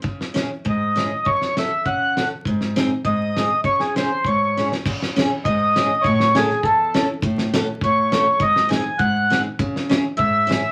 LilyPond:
<<
  \new Staff \with { instrumentName = "Accordion" } { \time 2/4 \key cis \minor \tempo 4 = 101 r4 dis''4 | cis''8 e''8 fis''8. r16 | r4 dis''4 | cis''16 gis'16 bis'8 cis''8. r16 |
r4 dis''4 | cis''8 gis'8 a'8. r16 | r4 cis''4 | dis''8 gis''8 fis''8. r16 |
r4 e''4 | }
  \new Staff \with { instrumentName = "Steel-string acoustic guitar" } { \time 2/4 \key cis \minor << { r8 <cis' e' gis'>8 r8 <cis' e' gis'>8 | r8 <cis' fis' a'>8 r8 <cis' fis' a'>8 | r8 <bis dis' gis'>8 r8 <bis dis' gis'>8 | r8 <cis' e' gis'>8 r8 <cis' e' gis'>8 |
r8 <cis' e' gis'>8 r8 <cis' e' gis'>8 | r8 <cis' e' a'>8 r8 <cis' e' a'>8 | r8 <cis' fis' a'>8 r8 <cis' fis' a'>8 | r8 <bis dis' gis'>8 r8 <bis dis' gis'>8 |
r8 <cis' e' gis'>8 r8 <cis' e' gis'>8 | } \\ { cis4 gis,4 | fis,4 cis4 | gis,4 gis,4 | cis4 gis,4 |
cis4 gis,4 | a,4 e,4 | a,4 a,4 | gis,4 gis,4 |
cis4 gis,4 | } >> }
  \new DrumStaff \with { instrumentName = "Drums" } \drummode { \time 2/4 bd16 sn16 sn8 bd8 sn8 | bd16 sn16 sn8 bd8 sn8 | bd16 sn16 sn8 bd8 sn8 | bd16 sn16 sn8 bd8 sn16 sn16 |
<cymc bd>16 sn16 <hhp sn>8 bd8 <hhp sn>8 | bd16 sn16 <hhp sn>16 sn16 bd8 <hhp sn>8 | bd16 sn16 <hhp sn>8 bd8 <hhp sn>8 | bd16 sn16 <hhp sn>8 bd8 <hhp sn>8 |
bd16 sn16 <hhp sn>8 bd8 <hhp sn>8 | }
>>